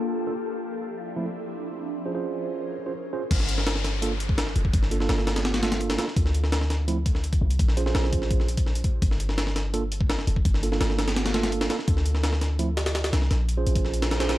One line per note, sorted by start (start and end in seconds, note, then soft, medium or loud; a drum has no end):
0.00 0.25 A#3 medium
0.00 0.43 A#3 medium
0.00 0.25 D4 medium
0.00 0.25 F4 medium
0.00 0.43 F4 medium
0.00 0.43 G4 medium
0.00 0.25 A4 medium
0.00 0.43 A4 loud
0.27 0.33 A#3 medium
0.27 0.33 D4 medium
0.27 0.33 F4 medium
0.27 0.33 A4 medium
0.45 1.86 F3 medium
0.45 1.86 C4 medium
0.45 1.86 D4 medium
0.45 1.86 E4 loud
1.16 1.25 F3 medium
1.16 1.25 A3 medium
1.16 1.25 C4 medium
1.16 1.25 E4 loud
1.88 3.29 C#4 medium
1.88 3.29 G#4 medium
1.88 3.29 A#4 medium
1.88 3.29 C5 loud
2.06 2.11 C#4 medium
2.06 2.11 F4 medium
2.06 2.11 G#4 medium
2.06 2.11 C5 medium
2.15 2.75 C#4 medium
2.15 2.75 F4 medium
2.15 2.75 G#4 medium
2.15 2.75 C5 medium
2.86 2.92 C#4 medium
2.86 2.92 F4 medium
2.86 2.92 G#4 medium
2.86 2.92 C5 medium
3.13 3.22 C#4 medium
3.13 3.22 F4 medium
3.13 3.22 G#4 medium
3.13 3.22 C5 medium
3.31 4.54 G1 loud
3.31 kick loud
3.31 closed hi-hat medium
3.31 crash medium
3.31 downlifter medium
3.40 snare soft
3.49 closed hi-hat medium
3.58 snare soft
3.67 snare loud
3.67 closed hi-hat medium
3.76 snare medium
3.84 snare medium
3.84 closed hi-hat medium
4.02 4.11 A#3 medium
4.02 4.11 D4 medium
4.02 4.11 F4 medium
4.02 4.11 A4 loud
4.02 closed hi-hat medium
4.20 closed hi-hat medium
4.29 kick loud
4.38 snare loud
4.38 closed hi-hat medium
4.47 snare soft
4.56 4.72 F1 loud
4.56 closed hi-hat medium
4.65 kick medium
4.73 5.08 G1 loud
4.73 kick loud
4.73 closed hi-hat medium
4.83 snare soft
4.91 4.97 A#3 medium
4.91 4.97 D4 medium
4.91 4.97 F4 medium
4.91 4.97 A4 medium
4.91 closed hi-hat medium
5.00 5.61 A#3 medium
5.00 5.61 D4 medium
5.00 5.61 F4 medium
5.00 5.61 A4 medium
5.00 snare soft
5.09 5.97 G1 medium
5.09 snare loud
5.09 closed hi-hat medium
5.18 snare soft
5.27 snare loud
5.27 closed hi-hat medium
5.36 snare loud
5.36 closed hi-hat medium
5.45 snare loud
5.45 closed hi-hat medium
5.54 snare loud
5.54 closed hi-hat medium
5.63 5.97 A#3 medium
5.63 5.97 D4 medium
5.63 5.97 F4 medium
5.63 5.97 A4 loud
5.63 snare loud
5.63 closed hi-hat medium
5.72 snare loud
5.72 closed hi-hat medium
5.81 closed hi-hat medium
5.90 snare loud
5.90 closed hi-hat medium
5.98 6.04 A#3 medium
5.98 6.04 D4 medium
5.98 6.04 F4 medium
5.98 6.04 A4 loud
5.98 snare loud
5.98 closed hi-hat medium
6.08 snare soft
6.16 7.40 D2 loud
6.16 kick loud
6.16 closed hi-hat medium
6.26 snare soft
6.34 closed hi-hat medium
6.44 snare soft
6.52 snare loud
6.52 closed hi-hat medium
6.61 snare medium
6.70 snare medium
6.70 closed hi-hat medium
6.88 6.97 F3 medium
6.88 6.97 A3 medium
6.88 6.97 C4 medium
6.88 6.97 E4 loud
6.88 closed hi-hat medium
7.06 kick loud
7.06 closed hi-hat medium
7.15 snare soft
7.24 closed hi-hat medium
7.33 kick loud
7.33 closed hi-hat medium
7.41 7.58 C2 loud
7.50 closed hi-hat medium
7.59 7.94 A#1 loud
7.59 kick loud
7.59 closed hi-hat medium
7.68 snare soft
7.77 7.83 C#4 medium
7.77 7.83 F4 medium
7.77 7.83 G#4 medium
7.77 7.83 C5 medium
7.77 closed hi-hat medium
7.86 8.47 C#4 medium
7.86 8.47 F4 medium
7.86 8.47 G#4 medium
7.86 8.47 C5 medium
7.86 snare soft
7.95 8.83 A#1 medium
7.95 snare loud
7.95 closed hi-hat medium
8.04 snare soft
8.13 kick loud
8.13 closed hi-hat medium
8.22 snare soft
8.31 kick loud
8.31 closed hi-hat medium
8.40 snare soft
8.48 closed hi-hat medium
8.57 kick loud
8.57 closed hi-hat medium
8.66 snare soft
8.75 closed hi-hat medium
8.84 kick loud
8.84 closed hi-hat medium
9.02 10.26 G1 loud
9.02 kick loud
9.02 closed hi-hat medium
9.11 snare soft
9.20 closed hi-hat medium
9.29 snare soft
9.38 snare loud
9.38 closed hi-hat medium
9.47 snare medium
9.56 snare medium
9.56 closed hi-hat medium
9.74 9.82 A#3 medium
9.74 9.82 D4 medium
9.74 9.82 F4 medium
9.74 9.82 A4 loud
9.74 closed hi-hat medium
9.92 closed hi-hat medium
10.01 kick loud
10.10 snare loud
10.10 closed hi-hat medium
10.19 snare soft
10.27 10.43 F1 loud
10.27 closed hi-hat medium
10.36 kick medium
10.45 10.79 G1 loud
10.45 kick loud
10.45 closed hi-hat medium
10.54 snare soft
10.63 10.68 A#3 medium
10.63 10.68 D4 medium
10.63 10.68 F4 medium
10.63 10.68 A4 medium
10.63 closed hi-hat medium
10.72 11.33 A#3 medium
10.72 11.33 D4 medium
10.72 11.33 F4 medium
10.72 11.33 A4 medium
10.72 snare soft
10.81 11.69 G1 medium
10.81 snare loud
10.81 closed hi-hat medium
10.90 snare soft
10.99 snare loud
10.99 closed hi-hat medium
11.08 snare loud
11.08 closed hi-hat medium
11.16 snare loud
11.16 closed hi-hat medium
11.26 snare loud
11.26 closed hi-hat medium
11.34 11.68 A#3 medium
11.34 11.68 D4 medium
11.34 11.68 F4 medium
11.34 11.68 A4 loud
11.34 snare loud
11.34 closed hi-hat medium
11.43 snare loud
11.43 closed hi-hat medium
11.52 closed hi-hat medium
11.61 snare loud
11.61 closed hi-hat medium
11.70 11.75 A#3 medium
11.70 11.75 D4 medium
11.70 11.75 F4 medium
11.70 11.75 A4 loud
11.70 snare loud
11.70 closed hi-hat medium
11.79 snare soft
11.88 13.11 D2 loud
11.88 kick loud
11.88 closed hi-hat medium
11.97 snare soft
12.06 closed hi-hat medium
12.15 snare soft
12.23 snare loud
12.23 closed hi-hat loud
12.33 snare medium
12.41 snare medium
12.41 closed hi-hat medium
12.59 12.68 F3 medium
12.59 12.68 A3 medium
12.59 12.68 C4 medium
12.59 12.68 E4 loud
12.59 closed hi-hat medium
12.77 snare loud
12.77 closed hi-hat medium
12.86 snare loud
12.86 closed hi-hat medium
12.95 snare loud
12.95 closed hi-hat medium
13.04 snare loud
13.04 closed hi-hat medium
13.13 13.29 C2 loud
13.13 snare loud
13.13 closed hi-hat medium
13.22 snare soft
13.31 13.65 A#1 loud
13.31 snare medium
13.31 closed hi-hat medium
13.49 closed hi-hat medium
13.57 14.18 C#4 medium
13.57 14.18 F4 medium
13.57 14.18 G#4 medium
13.57 14.18 C5 medium
13.67 14.38 A#1 medium
13.67 closed hi-hat medium
13.76 kick loud
13.76 closed hi-hat medium
13.85 snare soft
13.94 closed hi-hat medium
14.02 snare loud
14.02 closed hi-hat medium
14.02 reverse cymbal medium
14.11 snare loud
14.11 closed hi-hat medium
14.20 14.38 C#4 medium
14.20 14.38 F4 medium
14.20 14.38 G#4 medium
14.20 14.38 C5 loud
14.20 snare loud
14.20 closed hi-hat medium
14.29 snare loud
14.29 closed hi-hat medium